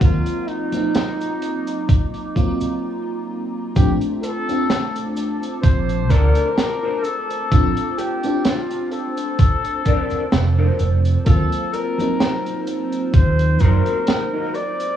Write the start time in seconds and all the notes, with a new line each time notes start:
Already playing: D#5 A#5
0.01 D#2 F#3 A#3 C4 F4 D6, kick, closed hi-hat, cabasa
0.26 closed hi-hat, cabasa
0.48 D#4, closed hi-hat
0.72 F#3 A#3 C4 D#4, closed hi-hat, cabasa
0.94 snare, closed hi-hat, cabasa
1.21 closed hi-hat, cabasa
1.42 closed hi-hat
1.67 closed hi-hat, cabasa
1.89 kick, closed hi-hat, cabasa
2.14 closed hi-hat, cabasa
2.35 F#3 A#3 C4 F4, kick, closed hi-hat
2.60 muted fretless electric bass stroke, closed hi-hat, cabasa
3.76 A#1 A3 C4 D4 F4 G4 C5 A5 D6, kick, closed hi-hat, cabasa
4.01 closed hi-hat
4.23 A4, muted clean electric guitar stroke, closed hi-hat, cabasa
4.49 C4 D4 F4, muted clean electric guitar stroke, closed hi-hat, cabasa
4.70 muted clean electric guitar stroke, snare, closed hi-hat, cabasa
4.96 closed hi-hat
5.17 closed hi-hat, cabasa
5.43 closed hi-hat, cabasa
5.63 A#1 C5, muted clean electric guitar stroke, kick, closed hi-hat, cabasa
5.90 closed hi-hat
6.10 D2 D4 A4 A#4 D5, kick, closed hi-hat, cabasa
6.35 closed hi-hat, cabasa
6.58 snare, closed hi-hat, cabasa
6.83 D4 A4 A#4 C5
7.04 A4, closed hi-hat, cabasa
7.30 muted clean electric guitar stroke, closed hi-hat, cabasa
7.51 A#1 C4 D4 F4, kick, closed hi-hat, cabasa
7.77 closed hi-hat
7.98 G4, muted clean electric guitar stroke, closed hi-hat, cabasa
8.23 C4 D4 F4, muted clean electric guitar stroke, closed hi-hat, cabasa
8.44 F4, muted clean electric guitar stroke, snare, closed hi-hat, cabasa
8.70 closed hi-hat
8.91 A4, closed hi-hat, cabasa
9.17 closed hi-hat, cabasa
9.39 muted clean electric guitar stroke, kick, closed hi-hat, cabasa
9.64 closed hi-hat
9.85 D4 A4 A#4 D5, kick, closed hi-hat, cabasa
10.10 muted fretless electric bass stroke, closed hi-hat, cabasa
10.32 F1, snare, closed hi-hat, cabasa
10.58 D4 A4 A#4 C5
10.79 F1, closed hi-hat, cabasa
11.05 muted clean electric guitar stroke, closed hi-hat, cabasa
11.26 D#2 F#3 A#3 C4 F4 A4, kick, closed hi-hat, cabasa
11.52 closed hi-hat
11.73 A#4, muted clean electric guitar stroke, closed hi-hat, cabasa
11.98 F#3 A#3 C4 D#4, muted clean electric guitar stroke, closed hi-hat, cabasa
12.20 snare, closed hi-hat, cabasa
12.46 closed hi-hat
12.67 closed hi-hat, cabasa
12.92 closed hi-hat, cabasa
13.14 D#2 C5, muted clean electric guitar stroke, kick, closed hi-hat, cabasa
13.39 closed hi-hat
13.60 F#2 D#4 F#4 A#4 C5, kick, closed hi-hat, cabasa
13.86 closed hi-hat, cabasa
14.07 snare, closed hi-hat, cabasa
14.33 D#4 F#4 A#4 D#5
14.54 D5, closed hi-hat, cabasa
14.80 muted clean electric guitar stroke, closed hi-hat, cabasa